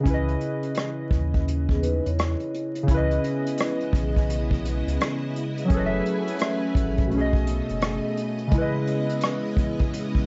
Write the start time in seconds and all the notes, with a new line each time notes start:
0.00 C#3 C#4
0.06 C#2 E4, kick, closed hi-hat
0.10 B4 D#5
0.29 closed hi-hat
0.41 closed hi-hat
0.63 closed hi-hat
0.75 cross-stick, closed hi-hat
1.11 D#2, kick, closed hi-hat
1.34 kick, closed hi-hat
1.48 closed hi-hat
1.69 B3 G#4, kick
1.82 D#4 B4, closed hi-hat
2.04 E2 E4 C#5, closed hi-hat
2.19 cross-stick, closed hi-hat
2.40 closed hi-hat
2.54 closed hi-hat
2.75 closed hi-hat
2.83 C#3 C#4
2.88 C#2 C#3 G#3 B3 E4 D#5, kick, closed hi-hat
2.94 B4 D#5
3.11 closed hi-hat
3.24 closed hi-hat
3.46 closed hi-hat
3.58 cross-stick, closed hi-hat
3.81 closed hi-hat
3.93 B1, kick, closed hi-hat
4.16 kick, closed hi-hat
4.30 closed hi-hat
4.51 kick, closed hi-hat
4.65 closed hi-hat
4.87 C#2, closed hi-hat
5.01 cross-stick, closed hi-hat
5.36 closed hi-hat
5.57 closed hi-hat
5.65 F#3 C#4
5.70 F#1 F#3 A3 C#4 G#4 A4 B4 G#5, kick, closed hi-hat
5.76 B4 D#5
5.86 E5
6.05 closed hi-hat
6.27 closed hi-hat
6.39 cross-stick, closed hi-hat
6.75 G#1, kick, closed hi-hat
6.97 kick, closed hi-hat
7.06 B2 A3
7.11 B1 A3 B3 C#4 D#5, closed hi-hat
7.17 G#4 D#5
7.33 kick, closed hi-hat
7.47 closed hi-hat
7.69 F#1, closed hi-hat
7.82 cross-stick, closed hi-hat
8.17 closed hi-hat
8.38 closed hi-hat
8.47 C#3 G#3
8.52 C#3 G#3 E4, kick, closed hi-hat
8.58 B4 D#5
8.87 closed hi-hat
9.10 closed hi-hat
9.21 cross-stick, closed hi-hat
9.57 kick, closed hi-hat
9.79 kick, closed hi-hat
9.94 closed hi-hat
10.15 kick